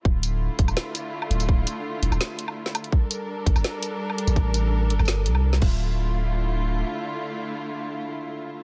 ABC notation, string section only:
X:1
M:4/4
L:1/8
Q:1/4=167
K:Dm
V:1 name="String section"
[D,A,EF]8- | [D,A,EF]8 | [G,DAB]8- | [G,DAB]6- [G,DAB] [D,A,EF]- |
[D,A,EF]8- | [D,A,EF]8 |]